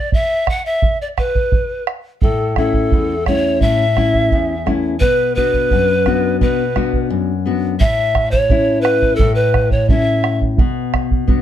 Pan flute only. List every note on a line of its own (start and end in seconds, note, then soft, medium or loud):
0.00 0.10 D5 medium
0.14 0.51 E5 loud
0.50 0.65 F#5 medium
0.66 0.98 E5 medium
1.02 1.08 D5 medium
1.18 1.84 B4 medium
2.21 2.54 A4 medium
2.58 3.28 A4 medium
3.27 3.63 C#5 medium
3.62 4.67 E5 loud
5.00 5.33 B4 loud
5.35 6.36 B4 loud
6.42 7.07 B4 medium
7.80 8.29 E5 loud
8.31 8.83 C#5 medium
8.81 9.17 B4 medium
9.16 9.36 A4 medium
9.35 9.73 B4 medium
9.72 9.89 C#5 medium
9.89 10.38 E5 medium